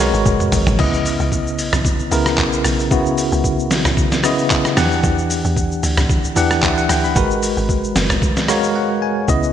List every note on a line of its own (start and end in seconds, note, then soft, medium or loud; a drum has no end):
0.00 0.13 B1 medium
0.00 0.81 G#3 medium
0.00 0.81 F#4 medium
0.00 0.81 A#4 medium
0.00 0.80 B4 loud
0.00 0.64 C#5 loud
0.14 0.25 G#1 medium
0.14 shaker soft
0.26 0.40 F#1 loud
0.26 kick loud
0.26 high tom medium
0.26 shaker medium
0.40 mid tom medium
0.40 shaker medium
0.52 0.66 G#1 medium
0.52 mid tom loud
0.52 open hi-hat medium
0.52 shaker loud
0.67 0.78 G#1 medium
0.67 floor tom loud
0.67 shaker soft
0.78 1.18 C#2 loud
0.78 1.64 C#3 medium
0.78 1.64 B3 medium
0.78 1.65 E4 medium
0.78 1.65 D#5 loud
0.78 kick loud
0.78 crash medium
0.94 shaker soft
1.06 open hi-hat medium
1.06 shaker loud
1.20 1.60 C#2 medium
1.20 shaker medium
1.32 kick loud
1.32 shaker medium
1.47 shaker medium
1.58 2.09 B1 loud
1.58 open hi-hat medium
1.58 shaker medium
1.73 cross-stick loud
1.73 mid tom loud
1.73 shaker medium
1.85 kick loud
1.85 shaker medium
1.99 shaker medium
2.11 2.37 C#2 medium
2.11 2.76 C#3 medium
2.11 2.76 B3 medium
2.11 2.77 E4 medium
2.11 2.77 A#4 loud
2.11 open hi-hat medium
2.11 shaker loud
2.26 cross-stick loud
2.26 shaker medium
2.38 2.63 B1 loud
2.38 kick loud
2.38 clap loud
2.38 shaker medium
2.53 shaker medium
2.64 2.93 B1 loud
2.64 cross-stick loud
2.64 open hi-hat medium
2.64 shaker loud
2.79 shaker medium
2.91 3.30 C#2 loud
2.91 3.76 C#3 medium
2.91 3.77 B3 medium
2.91 3.77 E4 medium
2.91 3.77 F#4 loud
2.91 kick loud
2.91 shaker medium
3.06 shaker soft
3.18 open hi-hat medium
3.18 shaker loud
3.32 3.72 C#2 loud
3.32 shaker medium
3.44 kick loud
3.44 shaker medium
3.59 shaker medium
3.71 3.96 B1 medium
3.71 snare medium
3.71 open hi-hat medium
3.71 shaker loud
3.85 cross-stick loud
3.85 mid tom loud
3.85 shaker medium
3.97 kick loud
3.97 shaker medium
4.12 snare medium
4.12 shaker medium
4.23 4.77 C#3 medium
4.23 4.77 B3 medium
4.23 4.77 E4 medium
4.23 4.78 D#5 loud
4.23 cross-stick loud
4.23 open hi-hat medium
4.23 shaker loud
4.38 shaker medium
4.50 kick medium
4.50 clap loud
4.50 shaker medium
4.65 cross-stick loud
4.65 shaker medium
4.76 5.02 E2 loud
4.76 5.62 E3 medium
4.76 5.62 D4 medium
4.76 5.63 G4 medium
4.76 5.63 F#5 loud
4.76 cross-stick loud
4.76 snare medium
4.76 open hi-hat medium
4.76 shaker loud
4.92 shaker medium
5.04 5.43 E2 loud
5.04 kick loud
5.04 shaker medium
5.18 shaker soft
5.30 open hi-hat medium
5.30 shaker loud
5.45 5.81 E2 loud
5.45 shaker medium
5.56 kick loud
5.56 shaker medium
5.72 shaker medium
5.83 6.34 D2 loud
5.83 open hi-hat medium
5.83 shaker medium
5.97 cross-stick loud
5.97 mid tom loud
5.97 shaker medium
6.09 kick loud
6.09 shaker medium
6.24 shaker medium
6.36 6.62 E2 loud
6.36 7.01 E3 medium
6.36 7.01 D4 medium
6.36 7.01 G4 medium
6.36 6.63 F#5 loud
6.36 open hi-hat medium
6.36 shaker loud
6.51 cross-stick loud
6.51 shaker medium
6.63 6.88 D2 loud
6.63 6.77 E5 medium
6.63 kick loud
6.63 clap loud
6.63 shaker medium
6.77 6.89 F#5 medium
6.77 shaker medium
6.89 7.15 D2 medium
6.89 7.03 G5 medium
6.89 cross-stick loud
6.89 open hi-hat medium
6.89 shaker loud
7.04 7.29 B5 medium
7.04 shaker medium
7.15 7.55 G#1 loud
7.15 8.01 G#3 medium
7.15 8.01 F#4 medium
7.15 8.02 A#4 medium
7.15 8.02 B4 loud
7.15 kick loud
7.15 shaker medium
7.31 shaker medium
7.43 open hi-hat medium
7.43 shaker loud
7.57 7.94 G#1 loud
7.57 shaker medium
7.69 kick loud
7.69 shaker medium
7.84 shaker medium
7.96 8.21 F#1 loud
7.96 snare medium
7.96 open hi-hat medium
7.96 shaker loud
8.10 cross-stick loud
8.10 mid tom loud
8.10 shaker medium
8.22 kick loud
8.22 shaker medium
8.37 snare medium
8.37 shaker medium
8.48 9.13 G#3 medium
8.48 9.13 F#4 medium
8.48 9.14 A#4 medium
8.48 9.14 C#5 loud
8.48 8.73 F5 medium
8.48 cross-stick loud
8.48 open hi-hat medium
8.48 shaker loud
8.63 shaker medium
8.75 9.00 F#5 medium
9.02 9.27 G#5 medium
9.28 9.53 C#2 loud
9.28 9.53 C#3 medium
9.28 9.53 B3 medium
9.28 9.53 E4 medium
9.28 9.53 D#5 loud
9.28 kick loud
9.28 shaker medium
9.43 shaker soft